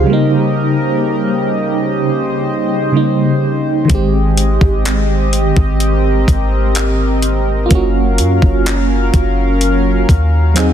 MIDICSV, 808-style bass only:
0, 0, Header, 1, 2, 480
1, 0, Start_track
1, 0, Key_signature, -4, "major"
1, 0, Tempo, 952381
1, 45, Time_signature, 4, 2, 24, 8
1, 5409, End_track
2, 0, Start_track
2, 0, Title_t, "808-style bass"
2, 0, Program_c, 0, 38
2, 1965, Note_on_c, 0, 32, 111
2, 2311, Note_off_c, 0, 32, 0
2, 2325, Note_on_c, 0, 32, 99
2, 2786, Note_off_c, 0, 32, 0
2, 2806, Note_on_c, 0, 32, 103
2, 3151, Note_off_c, 0, 32, 0
2, 3165, Note_on_c, 0, 32, 99
2, 3865, Note_off_c, 0, 32, 0
2, 3885, Note_on_c, 0, 30, 103
2, 4126, Note_on_c, 0, 42, 95
2, 4133, Note_off_c, 0, 30, 0
2, 4240, Note_off_c, 0, 42, 0
2, 4246, Note_on_c, 0, 30, 102
2, 4591, Note_off_c, 0, 30, 0
2, 4605, Note_on_c, 0, 30, 103
2, 5066, Note_off_c, 0, 30, 0
2, 5086, Note_on_c, 0, 39, 106
2, 5409, Note_off_c, 0, 39, 0
2, 5409, End_track
0, 0, End_of_file